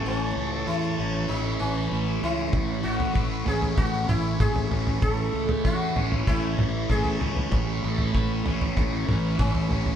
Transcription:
Already playing: E3 A3 C#4 E4 C#5 A5 C#6
0.05 A1 A2 C#4
0.36 C#2 A3
0.55 B3
0.67 E2 E4
0.98 A1 C#4
1.29 A1 A3 D#4 B5
1.60 A1 E3 C#4
1.91 A1 A3
2.23 C#2 C#4 E4
2.53 A1 A2, kick, floor tom
2.83 A1 A3 F#4
3.00 floor tom
3.15 A1 E4, kick
3.46 A1 C#4 G#4, floor tom
3.62 floor tom
3.77 A1 A3 F#4, kick, floor tom
4.08 A1 E3 E4, floor tom, mid tom
4.40 A1 A3 G#4, kick, mid tom
4.56 floor tom
4.71 A1 C#4, floor tom
4.87 floor tom
5.02 A1 A2 A4, kick, floor tom
5.34 C#2 A3
5.48 G#4, floor tom
5.64 E2 E4 F#4, kick
5.96 A1 C#4, floor tom
6.12 E4, floor tom
6.27 A1 A3 E4, kick, floor tom
6.58 A1 E3, floor tom, mid tom
6.90 A1 A3 G#4, kick, mid tom
7.05 floor tom
7.21 C#2 C#4, floor tom
7.37 floor tom
7.52 A1 A2, kick, floor tom
7.84 A1 A3
7.99 floor tom
8.15 A1 E4, kick
8.46 A1 C#4, floor tom
8.61 floor tom
8.77 A1 A3, kick, floor tom
9.08 A1 E3, floor tom, mid tom
9.39 A1 A3 C#4, kick, mid tom
9.55 floor tom
9.70 A1 C#4, floor tom
9.86 floor tom

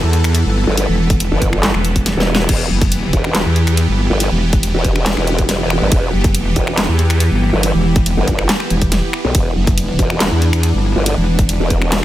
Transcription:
Already playing: E3 B3 A4
0.03 E2
0.13 closed hi-hat
0.24 finger snap, closed hi-hat
0.35 closed hi-hat
0.46 G1
0.67 G1
0.77 closed hi-hat
0.89 E1
1.10 kick, closed hi-hat
1.20 closed hi-hat
1.32 G1
1.42 kick, closed hi-hat
1.53 finger snap
1.63 snare, clap, closed hi-hat
1.74 E1, finger snap
1.85 closed hi-hat
1.96 kick, closed hi-hat
2.06 snare, closed hi-hat
2.17 E1, snare
2.35 snare
2.49 E1 G4, kick, closed hi-hat, crash, ride
2.70 F#1
2.81 kick, closed hi-hat
2.92 closed hi-hat, ride
3.13 E1, kick, closed hi-hat
3.24 finger snap
3.35 snare, clap, closed hi-hat, ride
3.46 E2
3.56 closed hi-hat
3.67 finger snap, closed hi-hat
3.77 closed hi-hat, ride
3.89 G1
4.10 G1
4.20 closed hi-hat, ride
4.31 E1
4.53 kick, closed hi-hat
4.63 closed hi-hat, ride
4.74 E1
4.84 kick, closed hi-hat
4.96 finger snap
5.06 snare, clap, closed hi-hat, ride
5.17 E1, finger snap
5.27 closed hi-hat
5.39 kick, closed hi-hat
5.49 snare, closed hi-hat, ride
5.70 finger snap
5.81 G1
5.92 E1, kick, closed hi-hat, ride
6.13 F#1
6.24 kick, closed hi-hat
6.35 closed hi-hat, ride
6.56 E1, kick, closed hi-hat
6.67 finger snap
6.77 snare, clap, closed hi-hat, ride
6.89 E2
6.99 closed hi-hat
7.10 finger snap, closed hi-hat
7.20 closed hi-hat, ride
7.32 G1
7.53 G1
7.63 closed hi-hat, ride
7.74 E1
7.96 kick, closed hi-hat
8.06 closed hi-hat, ride
8.17 G1
8.28 kick, closed hi-hat
8.39 finger snap
8.49 snare, clap, closed hi-hat, ride
8.60 finger snap
8.70 E1, closed hi-hat
8.82 kick, closed hi-hat
8.92 snare, closed hi-hat, ride
9.13 finger snap
9.24 B1
9.35 E1 D4, kick, closed hi-hat, ride
9.56 F#1
9.67 kick, closed hi-hat
9.78 closed hi-hat, ride
9.99 E1, kick, closed hi-hat
10.10 finger snap
10.20 snare, clap, closed hi-hat, ride
10.32 E2
10.42 closed hi-hat
10.53 finger snap, closed hi-hat
10.63 closed hi-hat, ride
10.74 G1
10.96 G1
11.06 closed hi-hat, ride
11.17 E1
11.39 kick, closed hi-hat
11.49 closed hi-hat, ride
11.60 E1
11.70 kick, closed hi-hat
11.82 finger snap
11.92 snare, clap, closed hi-hat, ride

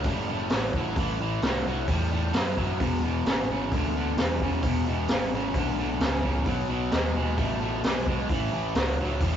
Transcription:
0.04 F#1 A2 G3, kick, open hi-hat
0.28 A2 G3
0.50 A1 A2 F#3, snare, open hi-hat
0.73 A1 A2 F#3, kick
0.96 A1 A2 E3, kick, open hi-hat
1.19 A1 A2 E3
1.42 C2 A2 F#3, snare, open hi-hat
1.65 C2 A2 F#3
1.88 E2 A2 G3, kick, open hi-hat
2.12 A2 G3
2.33 F#2 A2 F#3, snare, open hi-hat
2.56 F#2 A2 F#3, kick
2.79 E1 E2 B2, kick, open hi-hat
3.03 E1 E2 B2
3.25 G#1 E2 C#3, snare, open hi-hat
3.48 G#1 E2 C#3
3.71 D2 E2 D3, kick, open hi-hat
3.96 E2 D3
4.17 E1 E2 C#3, snare, open hi-hat
4.40 E1 E2 C#3, kick
4.63 E1 E2 B2, kick, open hi-hat
4.86 E1 E2 B2
5.08 G#1 E2 C#3, snare, open hi-hat
5.32 G#1 E2 C#3
5.54 B1 E2 D3, kick, open hi-hat
5.78 E2 D3
6.00 C#2 E2 C#3, snare, open hi-hat
6.23 C#2 E2 C#3, kick
6.46 B1 B2 F#3, kick, open hi-hat
6.69 B1 B2 F#3
6.91 D#2 B2 G#3, snare, open hi-hat
7.14 D#2 B2 G#3
7.37 A1 B2 A3, kick, open hi-hat
7.60 B2 A3
7.84 B1 B2 G#3, snare, open hi-hat
8.06 B1 B2 G#3, kick
8.29 A1 A2 E3, kick, open hi-hat
8.52 A1 A2 E3
8.75 C#2 A2 F#3, snare, open hi-hat
8.97 C#2 A2 F#3
9.20 E2 A2 G3, kick, open hi-hat

